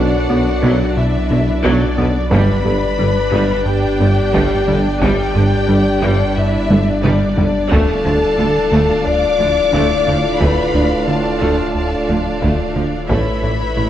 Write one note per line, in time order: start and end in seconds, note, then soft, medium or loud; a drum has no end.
0.00 2.33 B1 medium
0.00 2.27 F#2 medium
0.00 0.16 B2 medium
0.00 2.27 F#3 medium
0.00 2.27 B3 medium
0.00 2.27 D4 medium
0.00 0.94 F#4 loud
0.00 0.16 B4 medium
0.00 2.27 D5 medium
0.00 0.93 F#5 medium
0.29 0.37 B1 medium
0.29 0.43 B1 medium
0.29 0.37 B2 medium
0.29 0.38 D3 medium
0.29 0.50 B3 medium
0.29 0.50 F#4 medium
0.62 0.70 B1 medium
0.62 0.77 B1 medium
0.62 0.83 B2 loud
0.62 0.71 B2 medium
0.62 0.95 F#3 medium
0.62 0.83 B3 loud
0.95 1.17 B2 medium
0.95 1.63 E4 loud
0.95 1.62 E5 medium
1.30 1.38 B1 medium
1.30 1.44 B1 medium
1.30 1.51 B2 medium
1.30 1.39 B2 medium
1.30 1.40 D3 medium
1.30 1.51 D4 medium
1.63 1.77 B1 medium
1.63 1.72 B1 medium
1.63 1.72 B2 medium
1.63 1.85 B2 medium
1.63 1.96 F#3 medium
1.63 1.85 B3 loud
1.63 2.32 D4 medium
1.63 2.31 D5 medium
1.63 taiko medium
1.98 2.11 B1 medium
1.98 2.06 B1 medium
1.98 2.06 B2 medium
1.98 2.06 D3 medium
1.98 2.18 B3 medium
1.98 2.18 F#4 medium
1.98 taiko low soft
2.30 2.45 G1 medium
2.30 2.40 G1 medium
2.30 7.72 G1 medium
2.30 2.52 G2 medium
2.30 2.40 G2 medium
2.30 7.55 G2 medium
2.30 7.71 G3 medium
2.30 2.52 G3 loud
2.30 2.63 G3 medium
2.30 7.67 B3 medium
2.30 7.67 D4 medium
2.30 7.55 D4 medium
2.30 7.67 D4 medium
2.30 3.63 B4 loud
2.30 7.67 D5 medium
2.30 3.63 B5 medium
2.30 taiko loud
2.65 2.79 G1 medium
2.65 2.73 G1 medium
2.65 2.86 G2 medium
2.65 2.75 G2 medium
2.65 2.74 D3 medium
2.65 2.85 G4 medium
2.99 3.07 G1 medium
2.99 3.13 G1 medium
2.99 3.08 G2 medium
2.99 3.08 D3 medium
2.99 3.19 G3 medium
2.99 3.19 D4 medium
3.32 3.41 G1 medium
3.32 3.46 G1 medium
3.32 3.52 G2 loud
3.32 3.42 G2 medium
3.32 3.53 G3 loud
3.32 3.65 G3 medium
3.66 3.86 G2 medium
3.66 4.84 G4 loud
3.66 4.98 G5 medium
4.00 4.08 G1 medium
4.00 4.14 G1 medium
4.00 4.21 G2 medium
4.00 4.09 G2 medium
4.00 4.09 D3 medium
4.00 4.20 B3 medium
4.34 4.47 G1 medium
4.34 4.42 G1 medium
4.34 4.54 G2 medium
4.34 4.42 G2 medium
4.34 4.54 G3 medium
4.34 4.65 G3 medium
4.34 taiko medium
4.67 4.81 G1 medium
4.67 4.75 G1 medium
4.67 4.76 G2 medium
4.67 4.77 D3 medium
4.67 4.88 G3 medium
4.67 4.88 D4 medium
4.67 taiko low soft
5.01 5.09 G1 medium
5.01 5.15 G1 medium
5.01 5.21 G2 medium
5.01 5.10 G2 medium
5.01 5.21 G3 loud
5.01 5.33 G3 medium
5.01 6.33 G4 loud
5.01 6.33 G5 loud
5.01 taiko medium
5.34 5.42 G1 medium
5.34 5.49 G1 medium
5.34 5.43 G2 medium
5.34 5.55 G2 medium
5.34 5.43 D3 medium
5.34 5.55 G4 medium
5.69 5.77 G1 medium
5.69 5.82 G1 medium
5.69 5.77 G2 medium
5.69 5.77 D3 medium
5.69 5.89 G3 medium
5.69 5.89 D4 medium
6.02 6.10 G1 medium
6.02 6.16 G1 medium
6.02 6.11 G2 medium
6.02 6.23 G2 loud
6.02 6.34 G3 medium
6.02 6.23 G3 loud
6.35 6.57 G2 medium
6.35 7.02 E4 loud
6.35 7.03 E5 loud
6.70 6.83 G1 medium
6.70 6.78 G1 medium
6.70 6.90 G2 medium
6.70 6.79 G2 medium
6.70 6.78 D3 medium
6.70 6.90 B3 medium
6.70 taiko high medium
7.02 7.11 G1 medium
7.02 7.17 G1 loud
7.02 7.12 G2 medium
7.02 7.24 G2 medium
7.02 7.23 G3 loud
7.02 7.35 G3 medium
7.02 7.70 D4 medium
7.02 7.69 D5 medium
7.02 taiko mid medium
7.37 7.50 G1 medium
7.37 7.45 G1 medium
7.37 7.47 G2 medium
7.37 7.45 D3 medium
7.37 7.58 G3 medium
7.37 7.57 D4 medium
7.37 taiko low medium
7.70 13.11 D1 medium
7.70 7.84 D2 medium
7.70 7.79 D2 medium
7.70 7.92 D2 medium
7.70 7.80 D2 medium
7.70 13.07 A2 medium
7.70 7.91 D3 medium
7.70 13.09 A3 medium
7.70 8.03 A3 loud
7.70 13.10 D4 medium
7.70 13.07 D4 medium
7.70 13.10 F4 medium
7.70 13.07 F4 medium
7.70 9.05 A4 loud
7.70 13.06 D5 medium
7.70 13.07 D5 medium
7.70 13.11 F5 medium
7.70 9.05 A5 medium
7.70 taiko medium
8.05 8.18 D2 medium
8.05 8.13 D2 medium
8.05 8.25 D2 medium
8.05 8.13 F3 medium
8.05 8.25 D4 medium
8.38 8.51 D2 medium
8.38 8.46 D2 medium
8.38 8.47 D2 medium
8.38 8.47 D3 medium
8.38 8.59 D3 medium
8.38 8.58 A3 medium
8.72 8.85 D2 medium
8.72 8.80 D2 medium
8.72 8.92 D2 medium
8.72 8.81 D2 medium
8.72 8.92 D3 medium
8.72 9.04 A3 medium
9.06 9.26 D2 medium
9.06 10.41 D5 loud
9.06 10.41 D6 loud
9.39 9.47 D2 medium
9.39 9.53 D2 medium
9.39 9.60 D2 medium
9.39 9.49 D2 medium
9.39 9.48 D3 medium
9.39 9.59 F3 medium
9.73 9.81 D2 medium
9.73 9.87 D2 medium
9.73 9.94 D2 medium
9.73 9.82 D2 medium
9.73 9.93 D3 medium
9.73 10.05 A3 medium
9.73 taiko medium
10.06 10.15 D2 medium
10.06 10.21 D2 medium
10.06 10.16 D2 medium
10.06 10.27 D3 medium
10.06 10.14 F3 medium
10.06 10.27 A3 medium
10.06 taiko low soft
10.39 10.49 D2 medium
10.39 10.61 D2 medium
10.39 10.54 D2 medium
10.39 10.49 D2 medium
10.39 10.61 D3 medium
10.39 10.72 A3 medium
10.39 11.06 B4 loud
10.39 11.07 B5 medium
10.39 taiko medium
10.74 10.94 D2 medium
10.74 10.82 D2 medium
10.74 10.83 D2 medium
10.74 10.88 D2 medium
10.74 10.82 F3 soft
10.74 10.95 D4 medium
11.07 11.16 D2 medium
11.07 11.17 D2 medium
11.07 11.22 D2 medium
11.07 11.28 D3 medium
11.07 11.16 D3 medium
11.07 11.28 A3 medium
11.07 12.76 A4 medium
11.07 12.73 A5 medium
11.41 11.62 D2 medium
11.41 11.49 D2 medium
11.41 11.50 D2 medium
11.41 11.56 D2 medium
11.41 11.62 D3 medium
11.41 11.73 A3 medium
11.75 11.95 D2 medium
12.08 12.29 D2 medium
12.08 12.17 D2 medium
12.08 12.23 D2 soft
12.08 12.18 D2 medium
12.08 12.16 D3 medium
12.08 12.29 F3 medium
12.42 12.63 D2 medium
12.42 12.51 D2 medium
12.42 12.56 D2 medium
12.42 12.51 D2 medium
12.42 12.63 D3 medium
12.42 12.74 A3 medium
12.42 taiko medium
12.75 12.84 D2 medium
12.75 12.90 D2 soft
12.75 12.85 D2 soft
12.75 12.96 D3 medium
12.75 12.83 F3 medium
12.75 12.96 A3 medium
13.09 13.90 A1 medium
13.09 13.23 A1 medium
13.09 13.18 A1 medium
13.09 13.90 A2 medium
13.09 13.18 A2 medium
13.09 13.30 A2 medium
13.09 13.41 A3 medium
13.09 13.30 A3 medium
13.09 13.90 A3 medium
13.09 13.90 C#4 medium
13.09 13.90 E4 medium
13.09 13.90 B4 loud
13.09 13.90 C#5 medium
13.09 13.90 E5 medium
13.09 13.90 B5 medium
13.09 taiko medium
13.43 13.57 A1 soft
13.43 13.52 A1 soft
13.43 13.52 A2 soft
13.43 13.64 A2 medium
13.43 13.51 E3 soft
13.43 13.64 A4 medium
13.77 13.85 A1 soft
13.77 13.90 A1 soft
13.77 13.85 A2 soft
13.77 13.85 C#3 soft
13.77 13.90 A3 medium
13.77 13.90 E4 medium